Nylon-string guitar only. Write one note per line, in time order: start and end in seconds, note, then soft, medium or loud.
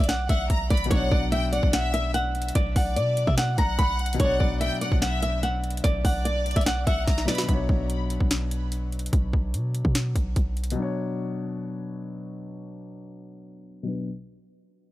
0.09 0.28 F#5 medium
0.30 0.68 E5 medium
0.70 0.89 D5 medium
0.91 1.10 C#5 loud
1.12 1.30 D5 medium
1.32 1.51 E5 medium
1.52 1.71 D5 medium
1.73 1.92 F#5 medium
1.94 2.13 E5 medium
2.14 2.53 F#5 medium
2.55 2.74 D5 loud
2.76 2.95 F#5 medium
2.96 3.25 D5 medium
3.27 3.37 E5 medium
3.38 3.56 F#5 loud
3.58 3.77 A#5 medium
3.79 3.98 B5 medium
4.20 4.39 C#5 loud
4.40 4.59 D5 medium
4.61 4.80 E5 medium
4.81 5.00 D5 medium
5.02 5.21 F#5 medium
5.23 5.41 E5 medium
5.43 5.82 F#5 medium
5.84 6.03 D5 loud
6.05 6.24 F#5 medium
6.25 6.54 D5 medium
6.56 6.66 E5 medium
6.66 6.85 F#5 medium
6.87 7.26 E5 medium
7.28 7.47 D5 medium